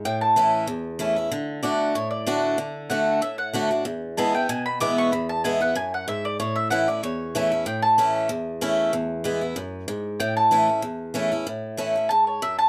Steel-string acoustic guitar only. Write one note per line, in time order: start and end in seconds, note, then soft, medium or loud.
0.05 0.65 A2 medium
0.36 0.67 E3 medium
0.36 0.67 A3 medium
0.36 0.67 C#4 loud
0.36 0.67 E4 loud
0.67 1.28 E2 medium
0.99 1.16 E3 medium
0.99 1.16 A3 loud
0.99 1.16 C#4 medium
0.99 1.15 E4 loud
1.16 1.32 C#4 soft
1.16 1.31 E4 medium
1.32 1.61 D3 loud
1.63 1.93 D3 medium
1.63 1.93 A3 medium
1.63 1.94 D4 loud
1.63 1.94 F#4 loud
1.95 2.56 A2 medium
2.27 2.57 D3 loud
2.27 2.57 A3 medium
2.27 2.57 D4 loud
2.27 2.58 F#4 loud
2.58 2.89 D3 medium
2.90 3.20 D3 medium
2.90 3.21 A3 medium
2.90 3.21 D4 loud
2.90 3.21 F#4 loud
3.22 3.83 A2 medium
3.53 3.70 D3 medium
3.53 3.70 A3 medium
3.53 3.71 D4 loud
3.53 3.70 F#4 loud
3.71 3.85 D4 soft
3.71 3.85 F#4 medium
3.85 4.46 E2 medium
4.17 4.34 E3 medium
4.17 4.34 G#3 loud
4.17 4.34 B3 loud
4.17 4.33 E4 medium
4.35 4.49 B3 soft
4.35 4.48 E4 medium
4.49 5.10 B2 loud
4.80 5.11 E3 loud
4.80 5.11 G#3 loud
4.80 5.11 B3 loud
4.80 5.11 E4 loud
5.13 5.73 E2 medium
5.45 5.61 E3 medium
5.45 5.61 G#3 loud
5.45 5.61 B3 loud
5.45 5.59 E4 loud
5.60 5.76 B3 soft
5.60 5.75 E4 medium
5.75 6.06 F#2 medium
6.08 6.38 G#2 medium
6.40 7.00 A2 medium
6.71 6.87 E3 medium
6.71 6.88 A3 medium
6.71 6.88 C#4 loud
6.71 6.87 E4 loud
6.88 7.03 C#4 soft
6.88 7.02 E4 medium
7.03 7.64 E2 loud
7.35 7.51 E3 medium
7.35 7.51 A3 loud
7.35 7.52 C#4 loud
7.35 7.50 E4 loud
7.52 7.67 C#4 medium
7.52 7.66 E4 medium
7.66 8.27 A2 medium
7.98 8.28 E3 medium
7.98 8.29 A3 loud
7.98 8.29 C#4 loud
7.98 8.29 E4 loud
8.29 8.90 E2 loud
8.61 8.92 E3 medium
8.61 8.92 A3 loud
8.61 8.92 C#4 loud
8.61 8.92 E4 loud
8.93 9.54 E2 loud
9.24 9.41 E3 medium
9.24 9.41 G#3 medium
9.24 9.42 B3 medium
9.24 9.40 E4 loud
9.41 9.57 B3 soft
9.41 9.56 E4 medium
9.56 9.87 F#2 medium
9.88 10.19 G#2 medium
10.20 10.81 A2 loud
10.51 10.68 E3 medium
10.51 10.68 A3 medium
10.51 10.68 C#4 medium
10.51 10.66 E4 loud
10.68 10.83 C#4 soft
10.68 10.83 E4 soft
10.82 11.44 E2 loud
11.14 11.31 E3 loud
11.14 11.32 A3 loud
11.14 11.31 C#4 loud
11.14 11.30 E4 loud
11.32 11.47 C#4 medium
11.32 11.46 E4 medium
11.47 12.08 A2 medium
11.77 11.95 E3 medium
11.77 11.95 A3 medium
11.77 11.95 C#4 loud
11.77 11.94 E4 medium
11.95 12.11 C#4 soft
11.95 12.10 E4 soft
12.11 12.41 G#2 medium
12.42 12.69 F#2 loud